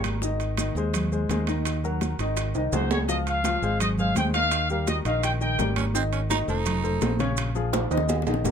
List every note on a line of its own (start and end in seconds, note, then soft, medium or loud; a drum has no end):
0.00 0.70 G#1 loud
0.00 0.16 G3 medium
0.00 0.16 G4 medium
0.00 0.16 A#4 medium
0.04 high bongo soft
0.04 high conga medium
0.04 high timbale loud
0.04 maracas soft
0.22 0.52 D#3 medium
0.22 0.52 D#4 medium
0.22 0.53 D#5 medium
0.22 high bongo medium
0.22 high conga soft
0.22 maracas medium
0.40 high bongo soft
0.40 high conga soft
0.40 high timbale medium
0.40 maracas soft
0.58 0.73 D#3 medium
0.58 0.73 D#4 medium
0.58 0.73 D#5 medium
0.58 high bongo medium
0.58 high conga medium
0.58 high timbale medium
0.58 maracas medium
0.75 1.26 D#2 medium
0.75 1.06 G#3 medium
0.75 1.06 G#4 medium
0.75 1.06 C5 medium
0.75 high bongo soft
0.75 maracas soft
0.94 high bongo medium
0.94 high conga soft
0.94 low conga medium
0.94 high timbale medium
0.94 maracas medium
1.12 1.27 G#3 medium
1.12 1.27 G#4 medium
1.12 1.27 C5 medium
1.12 high conga soft
1.12 maracas soft
1.29 2.13 D#2 loud
1.29 1.45 G#3 medium
1.29 1.45 G#4 medium
1.29 1.45 C5 medium
1.29 high bongo soft
1.29 low bongo medium
1.29 high conga medium
1.29 high timbale medium
1.29 maracas medium
1.47 1.77 D#3 medium
1.47 1.78 D#4 medium
1.47 1.78 D#5 medium
1.47 high bongo soft
1.47 high timbale medium
1.47 maracas soft
1.65 high bongo medium
1.65 high timbale medium
1.65 maracas medium
1.84 2.13 F#3 medium
1.84 2.14 F#4 medium
1.84 2.14 A#4 medium
1.84 high bongo soft
1.84 high conga soft
1.84 maracas soft
2.01 high bongo medium
2.01 high conga medium
2.01 high timbale medium
2.01 maracas medium
2.19 2.52 G#1 medium
2.19 2.49 D#3 medium
2.19 2.49 D#4 medium
2.19 2.50 D#5 medium
2.19 high bongo soft
2.19 high timbale medium
2.19 maracas soft
2.37 high bongo medium
2.37 high conga soft
2.37 high timbale loud
2.37 maracas medium
2.55 2.72 C2 medium
2.55 2.70 D#3 medium
2.55 2.70 D#4 medium
2.55 2.70 D#5 medium
2.55 high conga soft
2.55 high timbale medium
2.55 maracas soft
2.72 3.56 C#2 medium
2.72 3.03 F#3 medium
2.72 3.03 F#4 medium
2.72 3.03 G#4 medium
2.72 2.90 C5 medium
2.72 high bongo soft
2.72 low bongo medium
2.72 high conga medium
2.72 high timbale medium
2.72 maracas medium
2.90 2.99 C#5 medium
2.90 high bongo soft
2.90 high conga medium
2.90 low timbale medium
2.90 maracas soft
3.08 3.38 F3 medium
3.08 3.38 F4 medium
3.08 3.17 D#5 medium
3.08 3.39 F5 medium
3.08 high bongo medium
3.08 maracas medium
3.26 3.76 F5 loud
3.26 high bongo soft
3.26 high conga soft
3.26 high timbale medium
3.26 maracas soft
3.44 3.60 F3 medium
3.44 3.60 F4 medium
3.44 3.60 F5 medium
3.44 high bongo medium
3.44 high conga medium
3.44 high timbale medium
3.44 maracas medium
3.62 4.12 G#1 loud
3.62 3.92 G#3 medium
3.62 3.92 G#4 medium
3.62 3.92 C5 medium
3.62 high bongo soft
3.62 high conga soft
3.62 maracas soft
3.80 3.88 D#5 loud
3.80 high bongo medium
3.80 high conga soft
3.80 low conga medium
3.80 high timbale loud
3.80 maracas medium
3.98 4.13 G#3 medium
3.98 4.14 G#4 medium
3.98 4.14 C5 medium
3.98 4.16 F5 loud
3.98 high conga soft
3.98 low conga medium
3.98 maracas soft
4.15 5.00 D#2 medium
4.15 4.32 G#3 medium
4.15 4.32 G#4 medium
4.15 4.32 C5 medium
4.15 4.25 G5 loud
4.15 high bongo soft
4.15 low bongo medium
4.15 high conga medium
4.15 high timbale medium
4.15 maracas medium
4.34 4.64 D#3 medium
4.34 4.64 D#4 medium
4.34 4.64 D#5 medium
4.34 4.67 F5 loud
4.34 high bongo soft
4.34 high timbale medium
4.34 maracas soft
4.51 high bongo medium
4.51 high conga soft
4.51 high timbale loud
4.51 maracas medium
4.70 4.99 G3 medium
4.70 4.99 G4 medium
4.70 5.00 A#4 medium
4.70 4.87 F5 medium
4.70 high bongo soft
4.70 high conga soft
4.70 maracas soft
4.87 4.97 D#5 medium
4.87 high bongo medium
4.87 high conga loud
4.87 high timbale medium
4.87 maracas medium
5.05 5.55 A#1 medium
5.05 5.35 D#3 medium
5.05 5.35 D#4 medium
5.05 5.35 D#5 medium
5.05 5.23 F5 medium
5.05 high bongo soft
5.05 high conga soft
5.05 high timbale medium
5.05 maracas soft
5.23 5.32 G5 medium
5.23 high bongo medium
5.23 high conga soft
5.23 high timbale loud
5.23 maracas medium
5.41 5.56 D#3 medium
5.41 5.56 D#4 medium
5.41 5.56 D#5 medium
5.41 5.75 G5 loud
5.41 high conga soft
5.41 maracas soft
5.59 6.43 G#1 loud
5.59 5.88 G3 medium
5.59 5.88 G4 medium
5.59 5.89 A#4 medium
5.59 high bongo soft
5.59 low bongo medium
5.59 high conga medium
5.59 high timbale medium
5.59 maracas medium
5.76 5.85 C#4 medium
5.76 high bongo soft
5.76 high conga medium
5.76 high timbale medium
5.76 maracas soft
5.94 6.24 D#3 medium
5.94 6.03 C4 medium
5.94 6.24 D#4 medium
5.94 6.24 D#5 medium
5.94 high bongo medium
5.94 maracas medium
6.13 6.21 C#4 medium
6.13 high bongo soft
6.13 high conga soft
6.13 high timbale medium
6.13 maracas soft
6.30 6.45 D#3 medium
6.30 6.45 D#4 medium
6.30 6.39 D#4 loud
6.30 6.45 D#5 medium
6.30 high bongo medium
6.30 high conga medium
6.30 high timbale medium
6.30 maracas medium
6.48 6.98 F1 loud
6.48 6.78 A3 medium
6.48 7.17 D#4 loud
6.48 6.78 A4 medium
6.48 6.78 C5 medium
6.48 high bongo soft
6.48 high conga soft
6.48 maracas soft
6.66 high bongo medium
6.66 high conga soft
6.66 low conga medium
6.66 high timbale loud
6.66 maracas medium
6.84 6.99 A3 medium
6.84 6.99 A4 medium
6.84 6.99 C5 medium
6.84 high conga soft
6.84 low conga medium
6.84 maracas soft
7.01 7.86 A#1 loud
7.01 7.17 A3 medium
7.01 7.17 A4 medium
7.01 7.17 C5 medium
7.01 high bongo soft
7.01 low bongo medium
7.01 high conga medium
7.01 high timbale medium
7.01 low timbale medium
7.01 maracas medium
7.19 7.49 C#3 medium
7.19 7.49 C#4 loud
7.19 7.50 C#5 medium
7.19 high bongo soft
7.19 high timbale medium
7.19 maracas soft
7.37 high bongo medium
7.37 high conga soft
7.37 high timbale loud
7.37 maracas medium
7.55 7.85 F3 medium
7.55 7.85 F4 medium
7.55 7.86 G#4 medium
7.55 high bongo soft
7.55 high conga soft
7.55 maracas soft
7.73 high bongo loud
7.73 high conga loud
7.73 high timbale loud
7.73 maracas medium
7.91 8.24 D#2 medium
7.91 8.21 D#3 medium
7.91 8.21 D#4 medium
7.91 8.21 D#5 loud
7.91 high conga soft
7.91 high timbale medium
7.91 maracas soft
7.97 low bongo medium
8.09 high bongo loud
8.09 low timbale medium
8.09 maracas medium
8.22 high bongo medium
8.27 8.44 A#1 medium
8.27 8.42 D#3 medium
8.27 8.42 D#4 medium
8.27 8.43 D#5 medium
8.27 high conga soft
8.27 low timbale medium
8.27 maracas soft
8.34 low bongo medium
8.45 8.51 G#1 loud
8.45 8.51 G3 medium
8.45 8.51 G4 medium
8.45 8.51 A#4 medium
8.45 low bongo medium
8.45 high conga medium
8.45 low timbale medium
8.45 maracas medium